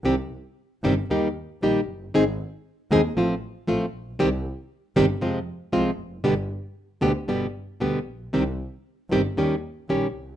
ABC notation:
X:1
M:4/4
L:1/8
Q:1/4=116
K:Gphr
V:1 name="Nylon-string guitar" clef=bass
[C,E,G,CG] z2 [C,E,G,CG] [E,G,B,EG] z [E,G,B,EG] z | [E,A,CEA] z2 [E,A,CEA] [F,=A,CF] z [F,A,CF] z | [C,E,G,CG] z2 [C,E,G,CG] [C,F,A,CF] z [C,F,A,CF] z | [=B,,D,G,=B,G] z2 [B,,D,G,B,G] [B,,D,G,B,G] z [B,,D,G,B,G] z |
[C,E,G,CG] z2 [C,E,G,CG] [E,G,_DG] z [E,G,DG] z |]
V:2 name="Double bass" clef=bass
C,, z2 G,,, E,, z B,,, ^F,,, | A,,, z2 E,, =A,,, z A,,, B,,, | C,, z2 G,,, F,, z C,, F,,, | G,,, z2 D,, G,,, z D,, B,,, |
C,, z2 G,,, E,, z B,,, C,, |]